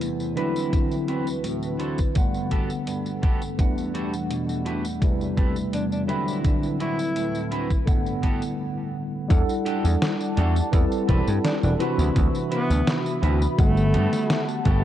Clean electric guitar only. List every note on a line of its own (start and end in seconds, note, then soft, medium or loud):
0.01 0.55 E2 medium
0.37 0.95 C4 medium
0.37 0.95 D4 medium
0.37 0.95 E4 medium
0.37 0.95 F#4 medium
0.37 0.95 B4 loud
0.72 1.26 D3 medium
1.08 1.27 C4 medium
1.08 1.27 D4 medium
1.08 1.27 E4 medium
1.08 1.27 F#4 medium
1.08 1.27 B4 medium
1.44 1.79 A2 medium
1.79 1.98 C4 medium
1.79 1.98 D4 medium
1.79 1.98 E4 medium
1.79 1.99 F#4 medium
1.79 1.99 A4 medium
2.15 2.69 G2 medium
2.51 2.70 B3 medium
2.51 2.70 F#4 medium
2.51 2.70 G4 medium
2.51 2.70 A4 medium
2.87 3.41 G2 medium
3.23 3.41 B3 medium
3.23 3.41 F#4 medium
3.23 3.42 G4 medium
3.23 3.42 A4 medium
3.59 4.12 E2 medium
3.94 4.13 D4 medium
3.94 4.13 E4 medium
3.94 4.13 F#4 medium
3.94 4.13 G4 medium
3.94 4.13 A4 medium
4.30 4.84 B2 medium
4.65 4.84 D4 medium
4.65 4.84 E4 medium
4.65 4.84 F#4 medium
4.65 4.85 G4 medium
4.65 4.85 B4 medium
5.01 5.55 E2 medium
5.37 5.56 C4 medium
5.37 5.56 G4 medium
5.37 5.56 A4 medium
5.37 5.56 B4 medium
5.73 6.27 E2 medium
6.08 6.66 C4 medium
6.08 6.66 D4 medium
6.08 6.66 E4 medium
6.08 6.66 F#4 medium
6.08 6.66 B4 medium
6.45 6.98 D3 medium
6.80 6.99 C4 medium
6.80 6.99 D4 medium
6.80 6.99 E4 medium
6.80 6.99 F#4 medium
6.80 6.99 B4 medium
7.16 7.52 A2 medium
7.51 7.70 C4 medium
7.51 7.70 D4 medium
7.51 7.70 E4 medium
7.51 7.70 F#4 medium
7.51 7.70 B4 loud
7.87 8.41 G2 medium
8.22 8.41 B3 medium
8.22 8.41 F#4 medium
8.22 8.42 G4 medium
8.22 8.42 A4 medium
9.66 9.84 D4 medium
9.66 9.84 F#4 medium
9.66 9.84 G4 medium
9.66 9.85 A4 loud
10.37 10.56 D4 loud
10.37 10.56 F#4 medium
10.37 10.56 G4 medium
10.37 10.56 A4 loud
11.08 11.27 C4 medium
11.08 11.27 G4 medium
11.08 11.27 A4 medium
11.08 11.27 B4 loud
11.79 12.38 C4 loud
11.79 12.38 E4 medium
11.79 12.38 F#4 medium
11.79 12.38 B4 medium
12.51 12.70 C4 medium
12.51 12.70 E4 medium
12.51 12.70 F#4 medium
12.51 12.70 B4 medium
13.22 13.41 C4 medium
13.22 13.41 E4 medium
13.22 13.41 F#4 medium
13.22 13.42 B4 medium
13.93 14.13 B3 medium
13.93 14.13 F#4 medium
13.93 14.13 G4 medium
13.93 14.13 A4 loud
14.65 14.84 B3 loud
14.65 14.84 F#4 medium
14.65 14.84 G4 medium
14.65 14.84 A4 loud